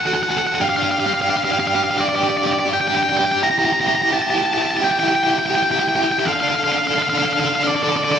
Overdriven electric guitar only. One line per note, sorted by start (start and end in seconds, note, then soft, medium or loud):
0.05 0.13 F#4 medium
0.05 0.13 A4 medium
0.13 0.21 F#4 soft
0.13 0.21 A4 medium
0.21 0.28 F#4 soft
0.21 0.28 A4 medium
0.28 0.36 F#4 soft
0.28 0.36 A4 medium
0.37 0.44 F#4 medium
0.37 0.44 A4 medium
0.44 0.51 F#4 soft
0.44 0.52 A4 medium
0.52 0.59 F#4 medium
0.52 0.60 A4 medium
0.60 0.68 D4 medium
0.60 0.68 G4 medium
0.68 0.75 D4 soft
0.68 0.76 G4 medium
0.75 0.83 D4 medium
0.75 0.82 G4 medium
0.82 0.90 D4 soft
0.82 0.90 G4 medium
0.91 0.98 D4 medium
0.91 0.98 G4 medium
0.98 1.06 D4 soft
0.98 1.06 G4 medium
1.06 1.13 D4 medium
1.06 1.13 G4 medium
1.13 1.21 D4 soft
1.13 1.21 G4 medium
1.21 1.29 D4 medium
1.21 1.29 G4 medium
1.29 1.36 D4 soft
1.29 1.36 G4 medium
1.37 1.44 D4 medium
1.37 1.44 G4 medium
1.45 1.51 D4 medium
1.45 1.52 G4 medium
1.51 1.59 D4 medium
1.51 1.59 G4 medium
1.59 1.67 D4 medium
1.59 1.66 G4 medium
1.67 1.74 D4 medium
1.67 1.74 G4 medium
1.75 1.83 D4 medium
1.75 1.83 G4 medium
1.83 1.90 D4 medium
1.83 1.90 G4 medium
1.90 1.98 D4 medium
1.90 1.97 G4 medium
1.97 2.05 D4 medium
1.97 2.05 G4 medium
2.05 2.12 D4 medium
2.05 2.13 G4 medium
2.12 2.20 D4 medium
2.12 2.20 G4 medium
2.20 2.28 D4 medium
2.20 2.27 G4 medium
2.27 2.36 D4 medium
2.27 2.35 G4 medium
2.36 2.44 D4 medium
2.36 2.42 G4 medium
2.43 2.51 D4 medium
2.43 2.50 G4 medium
2.51 2.59 D4 medium
2.51 2.57 G4 medium
2.58 2.65 D4 medium
2.58 2.65 G4 medium
2.66 2.73 D4 soft
2.66 2.73 G4 medium
2.73 2.81 D4 medium
2.73 2.80 G4 medium
2.81 2.89 D4 soft
2.81 2.88 G4 medium
2.88 2.96 D4 medium
2.88 2.96 G4 medium
2.97 3.05 D4 soft
2.97 3.03 G4 medium
3.04 3.12 D4 medium
3.04 3.11 G4 medium
3.12 3.20 D4 medium
3.12 3.18 G4 medium
3.19 3.27 D4 medium
3.19 3.26 G4 medium
3.27 3.34 D4 soft
3.33 3.42 D4 medium
3.33 3.41 G4 medium
3.43 3.50 E4 medium
3.43 3.51 G4 medium
3.51 3.57 E4 soft
3.51 3.58 G4 medium
3.58 3.65 E4 medium
3.58 3.66 G4 medium
3.65 3.73 E4 medium
3.65 3.73 G4 medium
3.73 3.80 E4 medium
3.73 3.81 G4 medium
3.81 3.88 E4 medium
3.81 3.88 G4 medium
3.89 3.96 E4 medium
3.89 3.96 G4 medium
3.97 4.03 E4 medium
3.97 4.04 G4 medium
4.04 4.11 E4 medium
4.04 4.12 G4 medium
4.12 4.20 E4 medium
4.12 4.19 G4 medium
4.19 4.27 G4 medium
4.27 4.34 E4 medium
4.27 4.35 G4 medium
4.34 4.42 E4 medium
4.34 4.42 G4 medium
4.42 4.50 E4 medium
4.42 4.50 G4 medium
4.50 4.57 E4 medium
4.50 4.57 G4 medium
4.57 4.65 E4 medium
4.57 4.65 G4 medium
4.65 4.73 E4 medium
4.65 4.73 G4 medium
4.73 4.79 E4 medium
4.73 4.80 G4 medium
4.80 4.87 E4 medium
4.80 4.88 G4 medium
4.88 4.96 E4 medium
4.88 4.96 G4 medium
4.96 5.02 E4 medium
4.96 5.04 G4 medium
5.03 5.10 E4 medium
5.03 5.11 G4 medium
5.11 5.18 E4 medium
5.11 5.19 G4 medium
5.19 5.26 E4 medium
5.19 5.26 G4 medium
5.26 5.34 E4 medium
5.26 5.34 G4 medium
5.34 5.41 E4 medium
5.34 5.42 G4 medium
5.41 5.49 E4 medium
5.41 5.49 G4 medium
5.49 5.57 E4 medium
5.49 5.57 G4 medium
5.57 5.65 E4 medium
5.57 5.65 G4 medium
5.65 5.72 E4 soft
5.65 5.71 G4 medium
5.72 5.80 E4 medium
5.72 5.79 G4 medium
5.80 5.87 E4 soft
5.80 5.88 G4 medium
5.87 5.95 E4 medium
5.87 5.95 G4 medium
5.95 6.01 E4 soft
5.95 6.02 G4 medium
6.02 6.09 E4 medium
6.02 6.10 G4 medium
6.10 6.18 E4 soft
6.10 6.18 G4 medium
6.18 6.26 E4 medium
6.18 6.26 G4 medium
6.27 6.34 D4 medium
6.27 6.34 A4 medium
6.34 6.42 D4 medium
6.34 6.41 A4 medium
6.42 6.49 D4 medium
6.42 6.49 A4 medium
6.50 6.57 D4 medium
6.50 6.59 A4 medium
6.58 6.65 D4 medium
6.58 6.67 A4 medium
6.66 6.72 D4 medium
6.66 6.75 A4 medium
6.73 6.80 D4 medium
6.73 6.83 A4 medium
6.80 6.88 D4 medium
6.80 6.90 A4 medium
6.88 6.95 D4 medium
6.88 6.98 A4 medium
6.95 7.02 D4 medium
6.95 7.06 A4 medium
7.03 7.10 D4 medium
7.03 7.13 A4 medium
7.12 7.18 D4 medium
7.12 7.21 A4 medium
7.19 7.25 D4 medium
7.19 7.28 A4 medium
7.25 7.33 D4 medium
7.25 7.36 A4 medium
7.34 7.41 D4 medium
7.34 7.44 A4 medium
7.41 7.49 D4 medium
7.41 7.52 A4 medium
7.49 7.56 D4 medium
7.49 7.59 A4 medium
7.57 7.64 D4 medium
7.57 7.67 A4 medium
7.64 7.71 D4 medium
7.69 7.79 D4 medium
7.69 7.76 A4 medium
7.76 7.87 D4 medium
7.76 7.83 A4 medium
7.84 7.95 D4 medium
7.84 7.91 A4 medium
7.92 7.99 A4 medium
7.96 8.02 D4 medium
7.96 8.06 A4 medium
8.03 8.10 D4 medium
8.03 8.14 A4 medium
8.11 8.18 D4 medium
8.15 8.19 A4 medium